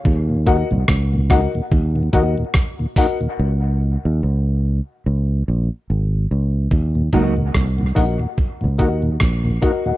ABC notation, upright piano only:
X:1
M:4/4
L:1/16
Q:"Swing 16ths" 1/4=72
K:Ebdor
V:1 name="Upright piano"
z2 [GBeg] z3 [GBeg] z3 [GBeg] z3 [GBeg] z | z16 | z2 [GBeg] z3 [GBeg] [eg] z2 [GBeg] z3 [GBeg] [GBeg] |]